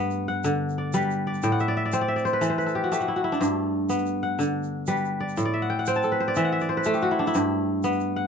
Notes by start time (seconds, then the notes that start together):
Already playing: G2 A3 B3 E5
0.10 shaker
0.28 F#5
0.44 D3, shaker
0.69 shaker
0.78 D5
0.93 G3 B4, shaker
1.10 shaker
1.27 D5
1.34 shaker
1.43 A2 G5, shaker
1.52 F#5
1.59 E5, shaker
1.68 D5
1.77 E5
1.85 D5
1.92 C4 C5, shaker
2.01 D5
2.08 E5
2.16 D5, shaker
2.25 C5, shaker
2.33 B4
2.41 E3 A4, shaker
2.50 C5
2.58 B4, shaker
2.66 A4, shaker
2.75 G4
2.84 F#4
2.92 A3 G4, shaker
3.00 F#4, shaker
3.08 E4
3.16 F#4
3.24 E4
3.32 D4, shaker
3.41 G2, shaker
3.89 B3, shaker
4.06 shaker
4.23 F#5
4.39 D3, shaker
4.63 shaker
4.87 G3 B4, shaker
4.96 shaker
5.05 shaker
5.20 D5
5.29 shaker
5.37 A2, shaker
5.45 D5
5.54 E5
5.62 F#5
5.70 G5
5.79 F#5
5.86 C4 G5, shaker
5.96 A5
6.02 A4, shaker
6.12 B4
6.20 C5
6.28 D5
6.35 E3 E5, shaker
6.45 F#5
6.52 E5
6.60 D5, shaker
6.69 C5
6.77 B4
6.84 A3 A4, shaker
6.94 G4, shaker
7.01 F#4, shaker
7.11 E4
7.19 D4
7.27 E4, shaker
7.34 G2, shaker
7.83 B3, shaker
8.00 shaker
8.16 F#5